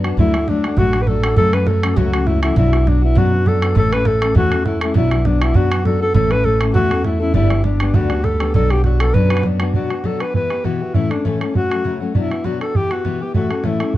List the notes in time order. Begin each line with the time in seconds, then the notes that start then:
Already playing: F#2
0.04 B3 D4 F#4, bodhran
0.17 D2 D3 F#3 A3 D4 E4 F#4, bodhran
0.34 A3 D4 F#4, bodhran
0.48 F#3 A3 D4 F#4, bodhran
0.64 A3 D4 F#4, bodhran
0.77 A1 D3 F#3 A3 D4 F#4, bodhran
0.93 A3 D4 F#4, bodhran
1.01 B4
1.07 F#3 A3 D4 F#4 A4, bodhran
1.15 bodhran
1.23 A3 D4 F#4, bodhran
1.36 F#2 C#3 F#3 A3 C#4 F#4 A4, bodhran
1.53 F#3 A3 C#4 F#4 B4, bodhran
1.66 F#3 A3 C#4 F#4 A4, bodhran
1.82 F#3 A3 C#4 F#4, bodhran
1.96 C#2 F#2 C#3 F#3 A3 C#4 F#4, bodhran
2.13 F#3 A3 C#4 F#4, bodhran
2.27 F#3 A3 C#4 E4 F#4, bodhran
2.35 bodhran
2.42 F#3 A3 C#4 E4 F#4, bodhran
2.56 B1 B2 F#3 B3 D4 E4 F#4, bodhran
2.72 B3 D4 F#4, bodhran
2.86 F#3 B3 D4 F#4, bodhran
3.02 B3 D4 E4 F#4
3.15 F#2 B2 F#3 B3 D4 F#4, bodhran
3.32 B3 D4 F#4
3.46 F#3 B3 D4 F#4 A4, bodhran
3.54 bodhran
3.61 B3 D4 F#4, bodhran
3.75 A1 A2 E3 A3 C#4 E4 A4, bodhran
3.92 A3 C#4 E4 A4 B4, bodhran
4.05 A3 C#4 E4 A4, bodhran
4.21 A3 C#4 E4 A4, bodhran
4.35 E2 A2 E3 A3 C#4 E4 F#4 A4, bodhran
4.51 A3 C#4 E4 A4, bodhran
4.65 A3 C#4 E4 A4, bodhran
4.74 bodhran
4.81 A3 C#4 E4 A4, bodhran
4.94 B1 B2 F#3 B3 D4 E4 F#4, bodhran
5.11 B3 D4 F#4, bodhran
5.25 F#3 B3 D4 F#4, bodhran
5.41 B3 D4 E4 F#4, bodhran
5.54 F#2 B2 F#3 B3 D4 F#4, bodhran
5.70 B3 F#4, bodhran
5.84 F#3 B3 D4 F#4 A4, bodhran
5.93 bodhran
6.00 B3 D4 F#4 A4
6.14 A1 A2 E3 A3 C#4 E4 A4, bodhran
6.31 A3 C#4 E4 A4 B4, bodhran
6.44 A3 C#4 E4 A4, bodhran
6.61 A3 C#4 E4 A4, bodhran
6.74 E2 A2 E3 A3 C#4 E4 F#4 A4, bodhran
6.91 A3 C#4 E4 A4, bodhran
7.04 A3 C#4 E4 A4, bodhran
7.12 bodhran
7.20 A3 C#4 E4 A4
7.34 G1 G2 D3 G3 B3 D4 E4 G4, bodhran
7.50 G3 B3 D4 G4, bodhran
7.64 G3 B3 D4 G4, bodhran
7.80 G3 B3 D4 G4, bodhran
7.94 D2 G2 D3 G3 B3 D4 F#4 G4, bodhran
8.09 G3 B3 D4 G4, bodhran
8.23 G3 B3 D4 G4 A4, bodhran
8.32 bodhran
8.40 G3 B3 D4 G4, bodhran
8.54 B1 B2 F#3 B3 D4 F#4 A4, bodhran
8.70 B3 D4 F#4 G4, bodhran
8.83 F#3 B3 D4 F#4, bodhran
9.00 B3 D4 F#4 A4, bodhran
9.14 F#2 B2 F#3 B3 D4 F#4 B4, bodhran
9.30 B3 D4 F#4, bodhran
9.37 bodhran
9.43 F#3 B3 D4 F#4, bodhran
9.52 bodhran
9.60 B3 D4 F#4, bodhran
9.74 B2 F#3 B3 D4 F#4, bodhran
9.90 B3 D4 F#4, bodhran
10.04 B2 F#3 B3 D4 F#4 A4, bodhran
10.19 B3 D4 F#4 B4, bodhran
10.34 E3 B3 E4 G4 B4, bodhran
10.50 B3 E4 G4, bodhran
10.64 B2 E3 B3 E4 F#4 G4, bodhran
10.81 B3 E4 G4
10.94 A2 E3 A3 C#4 E4 A4, bodhran
11.10 A3 C#4 D4 E4 A4, bodhran
11.24 A2 E3 A3 C#4 E4 A4, bodhran
11.41 A3 C#4 E4 A4, bodhran
11.54 F#3 A3 C#4 F#4, bodhran
11.70 F#3 A3 C#4 F#4, bodhran
11.84 F#2 C#3 F#3 A3 C#4 F#4, bodhran
12.00 F#3 A3 C#4 F#4
12.14 B2 F#3 B3 D4 E4 F#4, bodhran
12.30 B3 D4 F#4, bodhran
12.44 B2 F#3 B3 D4 F#4, bodhran
12.60 B3 D4 F#4 A4, bodhran
12.74 E3 B3 E4 G4, bodhran
12.91 B3 E4 F#4 G4, bodhran
13.04 B2 E3 B3 E4 G4, bodhran
13.20 B3 E4 G4
13.34 A2 E3 A3 C#4 E4 F#4 A4, bodhran
13.50 A3 C#4 E4 A4, bodhran
13.64 A2 E3 A3 C#4 E4 A4, bodhran
13.80 A3 C#4 E4 A4, bodhran
13.94 F#3, bodhran